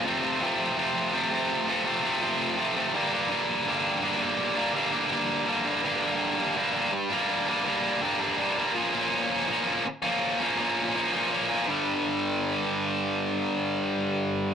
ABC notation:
X:1
M:4/4
L:1/16
Q:1/4=82
K:Gm
V:1 name="Distorted electric guitar"
[F,,C,F,A,C] [F,A,C] [C,F,A,C]2 [F,,C,F,A,C]2 [C,F,A,C] [F,A,C]2 [F,A,C] [C,F,A,C] [F,A,C] [F,,C,F,A,C]2 [C,F,A,C] [F,A,C] | [G,,D,G,B,D] [G,B,D] [D,G,B,D]2 [G,,D,G,B,D]2 [D,G,B,D] [G,B,D]2 [G,B,D] [D,G,B,D] [G,B,D] [G,,D,G,B,D]2 [D,G,B,D] [G,B,D] | [G,,D,G,B,D] [G,B,D]3 [G,,D,G,B,D] [G,B,D]2 [G,B,D]2 [G,B,D] [D,G,B,D]2 [G,,D,G,B,D] [G,B,D] [D,G,B,D] [G,B,D] | [B,,F,B,_D] [F,B,D]3 [B,,F,B,D] [F,B,D]2 [F,B,D]2 [F,B,D] [B,,F,B,D]2 [B,,F,B,D] [F,B,D] [B,,F,B,D] [F,B,D] |
[G,,D,G,]16 |]